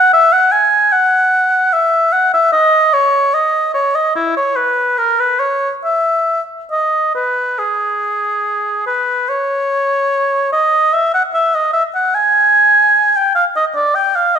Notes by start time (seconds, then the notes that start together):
Already playing: F#5
0.13 E5
0.33 F#5
0.52 G#5
0.92 F#5
1.73 E5
2.12 F#5
2.33 E5
2.52 D#5
2.93 C#5
3.34 D#5
3.74 C#5
3.95 D#5
4.15 E4
4.37 C#5
4.56 B4
4.98 A#4
5.20 B4
5.39 C#5
5.84 E5
6.71 D#5
7.15 B4
7.58 G#4
8.86 B4
9.29 C#5
10.52 D#5
10.93 E5
11.14 F#5
11.34 E5
11.55 D#5
11.73 E5
11.95 F#5
12.15 G#5
13.16 G5
13.35 F5
13.56 D#5
13.75 D5
13.95 G5
14.16 F5
14.35 D#5